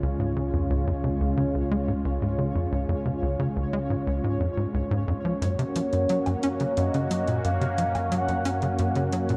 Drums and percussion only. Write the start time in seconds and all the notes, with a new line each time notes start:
5.42 closed hi-hat
5.59 closed hi-hat
5.76 closed hi-hat
5.93 closed hi-hat
6.09 closed hi-hat
6.26 closed hi-hat, low woodblock
6.43 closed hi-hat
6.60 closed hi-hat
6.77 closed hi-hat
6.94 closed hi-hat
7.11 closed hi-hat
7.28 closed hi-hat
7.45 closed hi-hat
7.61 closed hi-hat
7.78 closed hi-hat
7.95 closed hi-hat, low woodblock
8.12 closed hi-hat
8.28 closed hi-hat
8.45 closed hi-hat, low woodblock
8.62 closed hi-hat
8.79 closed hi-hat
8.95 closed hi-hat
9.12 closed hi-hat
9.29 closed hi-hat